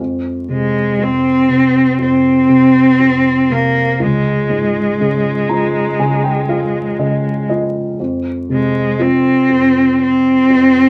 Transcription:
0.00 F2
0.49 C3
0.53 G#3
0.99 F2
1.03 C4
1.49 C3
1.99 F2 C4
2.49 C3
3.00 F2
3.50 C3 A#3
4.00 C#2 G#3
4.50 G#2
5.00 C#3
5.49 F3 A#5
6.00 C#3 G#5
6.24 G5
6.49 F3 F5
6.99 C#3 D#5
7.49 F3 D#5
8.00 F2
8.49 C3 G#3
8.99 F3 C4
9.49 F2
10.02 C4
10.50 F2

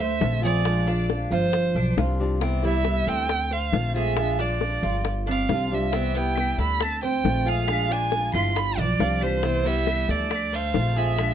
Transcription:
Already playing: D2
0.00 A3 C5 E5
0.21 A#1 D3 A3 C4 F4, high bongo, low bongo
0.41 F3 A3 C4 F4 G#4 D5
0.64 F3 G#3 D4 F4, high bongo
0.87 G#3 D4 F4, high bongo
1.10 F3 G#3 D4 F4, high bongo
1.31 G1 F3 F4 C5, high bongo
1.52 muted steel-string acoustic guitar stroke, high bongo
1.75 B1 D4, high bongo
1.97 C2 F3 C4 D4 F4 G4, high bongo, low bongo
2.20 F3 C4 D4 G4
2.40 C3 E3 G3 B3 C4 E4, high bongo
2.62 E3 G3 B3 E4 E5, high bongo
2.84 E3 G3 B3 E4, high bongo
3.07 D2 C4 A4 G5, high bongo
3.28 muted steel-string acoustic guitar stroke, high bongo
3.51 A3 C5 F5, high bongo
3.72 A#1 D3 A3 C4 F4, high bongo, low bongo
3.94 G#3 A3 C4 F4 G#4 E5
4.17 F3 G#3 D4 F4, high bongo
4.39 F3 G#3 D4 F4 D5, high bongo
4.60 F3 G#3 D4 F4, high bongo
4.83 G1 F4, high bongo
5.04 muted steel-string acoustic guitar stroke, high bongo
5.26 C4 D4, high bongo
5.31 F5
5.48 C2 F3 C4 D4 F4 G4, high bongo, low bongo
5.71 F3 G3 C4 D4 G4 E5
5.92 C3 E3 G3 B3 C4 E4, high bongo
6.15 E3 G3 B3 E4 G5, high bongo
6.35 E3 G3 B3 E4, high bongo, claves
6.58 D2 D4 A4 B5, high bongo
6.80 C4 A5, muted steel-string acoustic guitar stroke, high bongo, claves
7.03 C4 C5 G5, high bongo
7.24 A#1 D3 A3 C4 F4, high bongo, low bongo
7.45 G#3 A3 C4 F4 G#4 F5
7.67 F3 G#3 D4 F4, high bongo, claves
7.89 G#3 D4 F4 G#5, high bongo
8.12 F3 G#3 D4 F4, high bongo
8.34 G1 E4 F4 C6, high bongo, claves
8.56 D4 B5, muted steel-string acoustic guitar stroke, high bongo
8.77 B1 F3 D4 D5, high bongo
9.00 C2 F3 C4 D4 F4 G4, high bongo, low bongo
9.21 E3 F3 C4 D4 G4 C5, claves
9.43 C3 E3 G3 B3 C4 E4, high bongo
9.65 E3 G3 B3 E4 E5, high bongo
9.87 E3 G3 B3 E4, high bongo, claves
10.09 D2 F3 A4 D5, high bongo
10.30 muted steel-string acoustic guitar stroke, high bongo, claves
10.53 A3 C5 F5, high bongo
10.74 A#1 D3 A3 C4 F4, high bongo, low bongo
10.96 G#3 A3 C4 F4 G#4 E5
11.18 F3 G#3 D4 F4, high bongo, claves

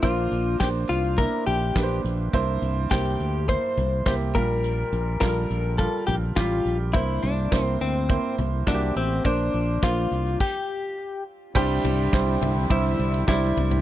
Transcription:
0.03 A#1 A#3 D4 F4 C5, kick, closed hi-hat
0.32 A#1, closed hi-hat
0.60 A#1 A#3 D4 G4 C5, kick, snare, clap, closed hi-hat
0.89 C2 F4, closed hi-hat
1.04 closed hi-hat
1.18 A#3 D4 E4 A#4, kick, closed hi-hat
1.47 A#1 G4, closed hi-hat
1.75 A#1 A#3 D4 B4, kick, snare, clap, closed hi-hat
1.83 C5
2.04 A#1, closed hi-hat
2.33 C2 G2 A#3 E4 C5, kick, closed hi-hat
2.62 C2, closed hi-hat
2.91 C2 A#3 E4 G4 C5, kick, snare, clap, closed hi-hat
3.20 D2, closed hi-hat
3.48 A#3 E4 C5, kick, closed hi-hat
3.77 C2, closed hi-hat, floor tom
4.06 C2 A#3 E4 G4 C5, kick, snare, clap, closed hi-hat
4.21 closed hi-hat
4.35 A#1 A#2 G3 F4 A#4, kick, closed hi-hat
4.64 closed hi-hat
4.92 A#1, closed hi-hat
5.21 A#1 G3 F4 A4 A#4, kick, snare, clap, closed hi-hat
5.29 A#4
5.50 A#1, closed hi-hat
5.78 G3 F4 A4 A#4, kick, closed hi-hat
6.07 A#1 G4, closed hi-hat, floor tom
6.36 A1 G3 F4 G4, kick, snare, clap, closed hi-hat
6.52 closed hi-hat
6.65 A#1, closed hi-hat
6.93 C2 G2 A#3 E4 C5, kick, closed hi-hat
7.23 C2 D4, closed hi-hat
7.51 C2 A#3 E4 C5, kick, snare, clap, closed hi-hat
7.65 C4
7.81 D2 C4, closed hi-hat
8.09 A#3 E4 C5, kick, closed hi-hat
8.38 C2, closed hi-hat, floor tom
8.67 C2 A#3 D4 E4 F#4, kick, snare, clap, closed hi-hat
8.74 G4
8.96 A1 C4, closed hi-hat
9.24 A#1 A#3 D4 C5, kick, closed hi-hat
9.54 A#1, closed hi-hat
9.82 A#1 A#3 D4 F4 C5, kick, snare, clap, closed hi-hat
10.11 C2, closed hi-hat
10.26 closed hi-hat
10.40 G4, kick, crash
11.55 C2 G2 D3 G3 C4 D4 E4 G4 C5, kick, crash
11.84 C2, floor tom, ride
12.13 C2 G3 D4 E4 C5, kick, snare, clap, ride
12.41 C2, floor tom, ride
12.70 C2 G3 D4 E4 C5, kick, ride
12.99 C2, ride
13.14 ride
13.27 C2 G3 D4 E4 C5, kick, snare, clap, ride
13.43 snare
13.57 C2, floor tom, ride
13.71 floor tom, ride

